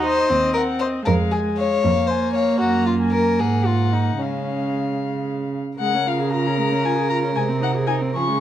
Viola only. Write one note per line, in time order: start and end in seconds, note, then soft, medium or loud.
0.00 0.31 D#4 medium
0.29 1.05 C4 medium
1.06 1.85 G#3 medium
1.83 4.19 A#3 medium
4.20 5.37 G#3 soft
5.80 5.96 G#3 medium
5.94 6.08 C#4 soft
6.06 6.21 F4 soft
6.20 6.35 G#4 soft
6.33 6.48 F4 soft
6.46 6.61 C#4 soft
6.59 6.73 G#3 soft
6.72 6.86 C#4 soft
6.84 6.98 F4 soft
6.97 7.11 G#4 soft
7.10 7.24 F4 soft
7.23 7.35 C#4 soft
7.36 7.51 G#3 medium
7.49 7.63 C4 soft
7.61 7.77 D#4 soft
7.75 7.90 G#4 medium
7.88 8.03 D#4 soft
8.02 8.15 C4 soft
8.15 8.29 F3 soft
8.28 8.40 G#3 soft